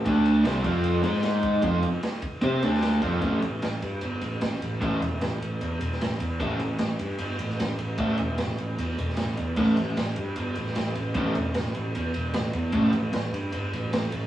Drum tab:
CC |----------------|----------------|----------------|----------------|
RD |x-x-x-x-x-x-x-x-|x-x-x-x-x-x-x-x-|x-x-x-x-x-x-x-x-|x-x-x-x-x-x-x-x-|
SD |----o------oo---|----o------oo---|----o-------o---|----o------oo---|
BD |o-----o-------o-|o-----o-------o-|o---------------|o---------------|

CC |----------------|----------------|x---------------|----------------|
RD |x-x-x-x-x-x-x-x-|x-x-x-x-x-x-x-x-|--x-x-x-x-x-x-x-|x-x-x-x-x-x-x-x-|
SD |----o------oo---|----o------oo---|----o------oo---|----o-------o---|
BD |o---------------|o---------------|o---------------|o---------------|

CC |----------------|
RD |x-x-x-x-x-x-x-x-|
SD |----o-------o---|
BD |o---------------|